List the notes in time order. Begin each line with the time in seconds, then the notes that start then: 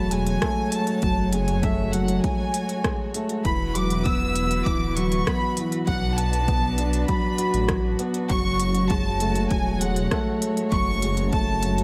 Already playing: E1 F#3 G#3 A3 F#4 C#5 A5
0.11 G#3 G#5, closed hi-hat
0.26 closed hi-hat
0.42 A3, kick, cross-stick, closed hi-hat
0.72 A5, closed hi-hat
0.87 closed hi-hat
1.02 F#1 F#3, kick, closed hi-hat
1.32 G#3 G#5, closed hi-hat
1.48 closed hi-hat
1.63 A3 E5, kick, closed hi-hat
1.92 F#3 F#5, closed hi-hat
2.08 closed hi-hat
2.23 F#3 G#5, kick, closed hi-hat
2.54 closed hi-hat
2.69 closed hi-hat
2.84 G#3, kick, cross-stick, closed hi-hat
3.14 A3, closed hi-hat
3.29 closed hi-hat
3.45 E1 E3 E4 B4 B5, kick, closed hi-hat
3.75 F#3 D6, closed hi-hat
3.90 closed hi-hat
4.05 B3 E6, kick, closed hi-hat
4.36 closed hi-hat
4.51 closed hi-hat
4.66 D1 E3 D6, kick, closed hi-hat
4.96 F#3 C#6, closed hi-hat
5.12 closed hi-hat
5.27 B3 B5, kick, cross-stick, closed hi-hat
5.57 E3, closed hi-hat
5.72 closed hi-hat
5.87 B1 F#3 D4 B4 F#5, kick, closed hi-hat
6.18 A5, closed hi-hat
6.33 closed hi-hat
6.48 B3, kick, closed hi-hat
6.78 D4, closed hi-hat
6.93 closed hi-hat
7.08 F#3 B5, kick, closed hi-hat
7.38 F#4, closed hi-hat
7.54 A1, closed hi-hat
7.69 F#3, kick, cross-stick, closed hi-hat
7.99 B3, closed hi-hat
8.14 closed hi-hat
8.29 F#1 F#3 G#3 C#5 C#6, kick, closed hi-hat
8.60 closed hi-hat
8.75 closed hi-hat
8.89 G#3 A5, kick, closed hi-hat
9.20 A3, closed hi-hat
9.35 closed hi-hat
9.49 E1 F#3 G#5, kick, closed hi-hat
9.81 G#3 F#5, closed hi-hat
9.96 closed hi-hat
10.11 A3, kick, cross-stick, closed hi-hat
10.42 closed hi-hat
10.57 closed hi-hat
10.71 F#1 F#3 C#6, kick, closed hi-hat
11.02 G#3, closed hi-hat
11.17 closed hi-hat
11.33 A3 A5, kick, closed hi-hat
11.63 F#3, closed hi-hat
11.78 closed hi-hat